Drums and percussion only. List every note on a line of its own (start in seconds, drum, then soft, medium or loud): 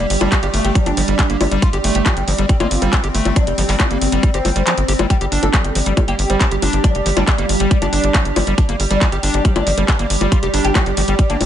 0.10 open hi-hat loud
0.21 closed hi-hat medium
0.21 high bongo medium
0.32 kick loud
0.32 clap loud
0.32 closed hi-hat medium
0.43 closed hi-hat medium
0.54 open hi-hat loud
0.65 closed hi-hat medium
0.75 kick loud
0.75 closed hi-hat medium
0.86 closed hi-hat medium
0.86 high bongo soft
0.97 open hi-hat loud
1.08 closed hi-hat medium
1.19 kick loud
1.19 clap loud
1.19 closed hi-hat medium
1.30 closed hi-hat medium
1.41 open hi-hat loud
1.41 high bongo medium
1.52 closed hi-hat medium
1.62 kick loud
1.62 closed hi-hat medium
1.73 closed hi-hat medium
1.84 open hi-hat loud
1.95 closed hi-hat medium
2.06 kick loud
2.06 clap loud
2.06 closed hi-hat loud
2.06 high bongo soft
2.17 closed hi-hat medium
2.28 open hi-hat loud
2.38 closed hi-hat medium
2.49 kick loud
2.49 closed hi-hat medium
2.60 closed hi-hat medium
2.60 high bongo medium
2.71 open hi-hat loud
2.82 closed hi-hat medium
2.93 kick loud
2.93 clap loud
2.93 closed hi-hat loud
3.04 closed hi-hat medium
3.15 open hi-hat loud
3.25 closed hi-hat medium
3.25 high bongo soft
3.36 kick loud
3.36 closed hi-hat loud
3.47 closed hi-hat medium
3.58 open hi-hat loud
3.69 clap soft
3.69 open hi-hat medium
3.80 kick loud
3.80 clap loud
3.80 closed hi-hat loud
3.80 high bongo medium
3.91 closed hi-hat medium
4.02 open hi-hat loud
4.12 closed hi-hat medium
4.23 kick loud
4.23 closed hi-hat medium
4.34 closed hi-hat medium
4.45 open hi-hat loud
4.45 high bongo soft
4.56 closed hi-hat medium
4.67 clap loud
4.67 closed hi-hat loud
4.78 closed hi-hat medium
4.88 open hi-hat loud
4.99 closed hi-hat medium
4.99 high bongo medium
5.10 kick loud
5.10 closed hi-hat loud
5.21 closed hi-hat medium
5.32 open hi-hat loud
5.43 closed hi-hat medium
5.43 high bongo soft
5.54 kick loud
5.54 clap loud
5.54 closed hi-hat loud
5.65 closed hi-hat medium
5.75 open hi-hat loud
5.86 closed hi-hat medium
5.97 kick loud
5.97 closed hi-hat loud
5.97 high bongo medium
6.08 closed hi-hat medium
6.19 open hi-hat loud
6.30 closed hi-hat medium
6.41 kick loud
6.41 clap loud
6.41 closed hi-hat loud
6.51 closed hi-hat medium
6.62 open hi-hat loud
6.62 high bongo soft
6.73 closed hi-hat medium
6.84 kick loud
6.84 closed hi-hat medium
6.95 closed hi-hat medium
7.06 open hi-hat loud
7.17 closed hi-hat medium
7.17 high bongo medium
7.28 kick loud
7.28 clap loud
7.28 closed hi-hat medium
7.38 closed hi-hat medium
7.49 open hi-hat loud
7.60 closed hi-hat medium
7.71 kick loud
7.71 closed hi-hat medium
7.82 closed hi-hat medium
7.82 high bongo soft
7.93 open hi-hat loud
8.04 closed hi-hat medium
8.14 kick loud
8.14 clap loud
8.14 closed hi-hat medium
8.25 closed hi-hat medium
8.36 open hi-hat loud
8.36 high bongo medium
8.47 closed hi-hat medium
8.58 kick loud
8.58 closed hi-hat medium
8.69 closed hi-hat medium
8.80 open hi-hat loud
8.91 closed hi-hat medium
9.01 kick loud
9.01 clap loud
9.01 closed hi-hat medium
9.01 high bongo soft
9.12 closed hi-hat medium
9.23 open hi-hat loud
9.34 closed hi-hat medium
9.45 kick loud
9.45 closed hi-hat medium
9.56 closed hi-hat medium
9.56 high bongo medium
9.67 open hi-hat loud
9.78 closed hi-hat medium
9.88 kick loud
9.88 clap loud
9.88 closed hi-hat medium
9.99 closed hi-hat medium
10.10 open hi-hat loud
10.21 closed hi-hat medium
10.21 high bongo soft
10.32 kick loud
10.32 closed hi-hat medium
10.43 closed hi-hat medium
10.54 open hi-hat loud
10.65 closed hi-hat medium
10.75 kick loud
10.75 clap loud
10.75 closed hi-hat medium
10.75 high bongo medium
10.86 closed hi-hat soft
10.97 open hi-hat loud
11.08 closed hi-hat medium
11.19 kick loud
11.19 closed hi-hat medium
11.30 closed hi-hat medium
11.41 open hi-hat loud
11.41 high bongo soft